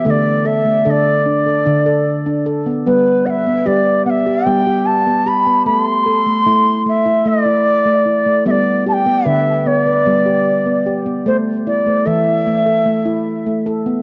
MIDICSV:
0, 0, Header, 1, 3, 480
1, 0, Start_track
1, 0, Key_signature, 1, "major"
1, 0, Tempo, 801068
1, 35, Time_signature, 7, 3, 24, 8
1, 8402, End_track
2, 0, Start_track
2, 0, Title_t, "Bansuri"
2, 0, Program_c, 0, 73
2, 39, Note_on_c, 0, 76, 69
2, 59, Note_on_c, 0, 74, 76
2, 65, Note_off_c, 0, 76, 0
2, 276, Note_on_c, 0, 76, 81
2, 285, Note_off_c, 0, 74, 0
2, 510, Note_off_c, 0, 76, 0
2, 510, Note_on_c, 0, 76, 75
2, 539, Note_on_c, 0, 74, 81
2, 545, Note_off_c, 0, 76, 0
2, 1473, Note_off_c, 0, 74, 0
2, 1714, Note_on_c, 0, 71, 68
2, 1952, Note_on_c, 0, 78, 65
2, 1961, Note_off_c, 0, 71, 0
2, 1977, Note_on_c, 0, 76, 70
2, 1983, Note_off_c, 0, 78, 0
2, 2196, Note_on_c, 0, 74, 73
2, 2205, Note_off_c, 0, 76, 0
2, 2426, Note_off_c, 0, 74, 0
2, 2429, Note_on_c, 0, 78, 73
2, 2456, Note_on_c, 0, 76, 80
2, 2462, Note_off_c, 0, 78, 0
2, 2668, Note_on_c, 0, 79, 83
2, 2677, Note_off_c, 0, 76, 0
2, 2911, Note_on_c, 0, 81, 83
2, 2920, Note_off_c, 0, 79, 0
2, 3160, Note_on_c, 0, 83, 80
2, 3169, Note_off_c, 0, 81, 0
2, 3388, Note_off_c, 0, 83, 0
2, 3391, Note_on_c, 0, 83, 93
2, 3499, Note_off_c, 0, 83, 0
2, 3499, Note_on_c, 0, 84, 93
2, 4089, Note_off_c, 0, 84, 0
2, 4126, Note_on_c, 0, 76, 83
2, 4363, Note_on_c, 0, 74, 90
2, 4372, Note_off_c, 0, 76, 0
2, 5071, Note_off_c, 0, 74, 0
2, 5074, Note_on_c, 0, 76, 73
2, 5097, Note_on_c, 0, 74, 79
2, 5103, Note_off_c, 0, 76, 0
2, 5298, Note_off_c, 0, 74, 0
2, 5323, Note_on_c, 0, 81, 81
2, 5351, Note_on_c, 0, 79, 88
2, 5357, Note_off_c, 0, 81, 0
2, 5552, Note_on_c, 0, 76, 88
2, 5561, Note_off_c, 0, 79, 0
2, 5793, Note_on_c, 0, 74, 88
2, 5802, Note_off_c, 0, 76, 0
2, 6594, Note_off_c, 0, 74, 0
2, 6751, Note_on_c, 0, 72, 77
2, 6806, Note_off_c, 0, 72, 0
2, 6989, Note_on_c, 0, 74, 74
2, 7224, Note_on_c, 0, 76, 80
2, 7233, Note_off_c, 0, 74, 0
2, 8188, Note_off_c, 0, 76, 0
2, 8402, End_track
3, 0, Start_track
3, 0, Title_t, "Handpan"
3, 0, Program_c, 1, 114
3, 29, Note_on_c, 1, 57, 78
3, 37, Note_on_c, 1, 50, 81
3, 216, Note_off_c, 1, 50, 0
3, 270, Note_on_c, 1, 69, 63
3, 272, Note_off_c, 1, 57, 0
3, 389, Note_on_c, 1, 57, 60
3, 393, Note_off_c, 1, 69, 0
3, 511, Note_on_c, 1, 69, 69
3, 512, Note_off_c, 1, 57, 0
3, 516, Note_on_c, 1, 50, 76
3, 753, Note_off_c, 1, 69, 0
3, 753, Note_on_c, 1, 62, 67
3, 874, Note_off_c, 1, 62, 0
3, 876, Note_off_c, 1, 50, 0
3, 876, Note_on_c, 1, 69, 61
3, 991, Note_on_c, 1, 62, 72
3, 995, Note_off_c, 1, 69, 0
3, 997, Note_on_c, 1, 50, 86
3, 1113, Note_off_c, 1, 62, 0
3, 1114, Note_on_c, 1, 69, 69
3, 1355, Note_off_c, 1, 69, 0
3, 1355, Note_on_c, 1, 62, 62
3, 1475, Note_off_c, 1, 62, 0
3, 1475, Note_on_c, 1, 69, 63
3, 1537, Note_off_c, 1, 50, 0
3, 1595, Note_off_c, 1, 69, 0
3, 1595, Note_on_c, 1, 59, 56
3, 1709, Note_off_c, 1, 59, 0
3, 1716, Note_on_c, 1, 59, 77
3, 1720, Note_on_c, 1, 55, 81
3, 1898, Note_off_c, 1, 55, 0
3, 1956, Note_off_c, 1, 59, 0
3, 1956, Note_on_c, 1, 71, 66
3, 2076, Note_off_c, 1, 71, 0
3, 2078, Note_on_c, 1, 59, 62
3, 2192, Note_on_c, 1, 67, 69
3, 2197, Note_off_c, 1, 59, 0
3, 2199, Note_on_c, 1, 55, 76
3, 2434, Note_off_c, 1, 67, 0
3, 2434, Note_on_c, 1, 59, 65
3, 2555, Note_off_c, 1, 59, 0
3, 2555, Note_on_c, 1, 67, 64
3, 2558, Note_off_c, 1, 55, 0
3, 2675, Note_off_c, 1, 67, 0
3, 2675, Note_on_c, 1, 59, 76
3, 2677, Note_on_c, 1, 55, 86
3, 2795, Note_off_c, 1, 59, 0
3, 2796, Note_on_c, 1, 67, 70
3, 3035, Note_on_c, 1, 59, 66
3, 3036, Note_off_c, 1, 67, 0
3, 3153, Note_on_c, 1, 67, 65
3, 3155, Note_off_c, 1, 59, 0
3, 3217, Note_off_c, 1, 55, 0
3, 3274, Note_off_c, 1, 67, 0
3, 3276, Note_on_c, 1, 59, 60
3, 3392, Note_on_c, 1, 57, 84
3, 3396, Note_off_c, 1, 59, 0
3, 3574, Note_off_c, 1, 57, 0
3, 3632, Note_on_c, 1, 69, 65
3, 3754, Note_off_c, 1, 69, 0
3, 3755, Note_on_c, 1, 57, 62
3, 3868, Note_off_c, 1, 57, 0
3, 3875, Note_on_c, 1, 64, 66
3, 3876, Note_on_c, 1, 57, 77
3, 4105, Note_off_c, 1, 57, 0
3, 4112, Note_on_c, 1, 57, 63
3, 4115, Note_off_c, 1, 64, 0
3, 4230, Note_on_c, 1, 64, 58
3, 4234, Note_off_c, 1, 57, 0
3, 4348, Note_on_c, 1, 57, 74
3, 4353, Note_off_c, 1, 64, 0
3, 4469, Note_on_c, 1, 64, 62
3, 4472, Note_off_c, 1, 57, 0
3, 4708, Note_on_c, 1, 57, 60
3, 4712, Note_off_c, 1, 64, 0
3, 4830, Note_on_c, 1, 64, 57
3, 4832, Note_off_c, 1, 57, 0
3, 4952, Note_on_c, 1, 57, 59
3, 4953, Note_off_c, 1, 64, 0
3, 5069, Note_on_c, 1, 59, 80
3, 5071, Note_on_c, 1, 55, 84
3, 5074, Note_off_c, 1, 57, 0
3, 5312, Note_off_c, 1, 59, 0
3, 5312, Note_on_c, 1, 67, 67
3, 5431, Note_on_c, 1, 59, 58
3, 5433, Note_off_c, 1, 55, 0
3, 5434, Note_off_c, 1, 67, 0
3, 5546, Note_on_c, 1, 71, 67
3, 5551, Note_on_c, 1, 50, 80
3, 5553, Note_off_c, 1, 59, 0
3, 5790, Note_on_c, 1, 59, 59
3, 5791, Note_off_c, 1, 71, 0
3, 5912, Note_off_c, 1, 50, 0
3, 5912, Note_off_c, 1, 59, 0
3, 5912, Note_on_c, 1, 71, 56
3, 6027, Note_on_c, 1, 59, 70
3, 6033, Note_off_c, 1, 71, 0
3, 6035, Note_on_c, 1, 55, 76
3, 6147, Note_on_c, 1, 67, 66
3, 6151, Note_off_c, 1, 59, 0
3, 6387, Note_on_c, 1, 59, 62
3, 6391, Note_off_c, 1, 67, 0
3, 6508, Note_on_c, 1, 67, 60
3, 6511, Note_off_c, 1, 59, 0
3, 6626, Note_on_c, 1, 59, 59
3, 6631, Note_off_c, 1, 67, 0
3, 6747, Note_on_c, 1, 57, 78
3, 6750, Note_off_c, 1, 59, 0
3, 6754, Note_off_c, 1, 55, 0
3, 6990, Note_off_c, 1, 57, 0
3, 6991, Note_on_c, 1, 64, 60
3, 7106, Note_on_c, 1, 57, 63
3, 7113, Note_off_c, 1, 64, 0
3, 7223, Note_on_c, 1, 69, 66
3, 7230, Note_off_c, 1, 57, 0
3, 7230, Note_on_c, 1, 52, 83
3, 7468, Note_off_c, 1, 69, 0
3, 7468, Note_on_c, 1, 57, 68
3, 7586, Note_on_c, 1, 69, 63
3, 7591, Note_off_c, 1, 57, 0
3, 7592, Note_off_c, 1, 52, 0
3, 7704, Note_on_c, 1, 57, 69
3, 7710, Note_off_c, 1, 69, 0
3, 7822, Note_on_c, 1, 64, 70
3, 7829, Note_off_c, 1, 57, 0
3, 8068, Note_off_c, 1, 64, 0
3, 8068, Note_on_c, 1, 57, 60
3, 8187, Note_on_c, 1, 69, 65
3, 8191, Note_off_c, 1, 57, 0
3, 8306, Note_on_c, 1, 59, 61
3, 8310, Note_off_c, 1, 69, 0
3, 8402, Note_off_c, 1, 59, 0
3, 8402, End_track
0, 0, End_of_file